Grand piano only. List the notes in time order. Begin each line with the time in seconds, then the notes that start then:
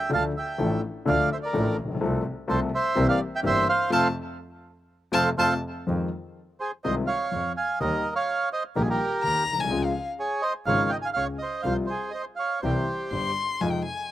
0.09 D2 D3 F3 A3 D4 A4
0.58 A1 A2 F3 A3 D4 A4
1.05 D2 D3 F3 A3 D4 A4
1.53 A1 A2 F3 A3 D4 A4
1.84 A1
1.88 A#1
1.95 B1
2.01 C2 C3 F3 A3 C4 A4
2.48 C2 C3 F3 A3 C4 A4
2.95 C2 C3 E3 A#3 C4 G4
3.43 G1 G2 E3 A#3 C4 G4
3.90 C3 F3 A3
5.12 C3 F3 A3
5.37 C3 F3 A3
5.87 F2 D#3 F3 G#3 C4 F4
6.84 C2 C3 D#3 G#3 C4 F4
7.31 F2 F3
7.80 D#2 D#3 G3 A#3 G4
8.75 A#1 A#2 D#3 G3 A#3 G4
9.23 D#2 D#3
9.53 A#1
9.59 B1
9.64 C2
9.70 C#2 C#3 F3 G#3 F4
10.66 G#1 G#2 C#3 F3 G#3 F4
11.16 C#2 C#3
11.64 C2 C3 F3 G3 F4
12.63 C2 C3 E3 G3 E4
13.12 G1 G2
13.61 F2 C3 F3 G#3 D#4